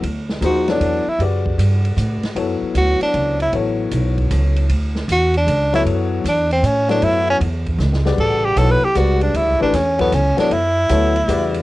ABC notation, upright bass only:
X:1
M:3/4
L:1/8
Q:"Swing" 1/4=155
K:D
V:1 name="Upright bass" clef=bass
D,,2 _E,,2 =E,, z | F,,2 G,,2 A,, z | F,, z D,, z C,,2 | A,,,2 B,,,2 C,,2 |
D,,2 E,,2 C,,2 | F,,2 E,,2 A,,2 | F,,2 E,,2 C,,2 | A,,,2 B,,, z C,,2 |
(3D,, C,, A,,, E,,2 C,, z | F,,2 D,,2 E,,2 |]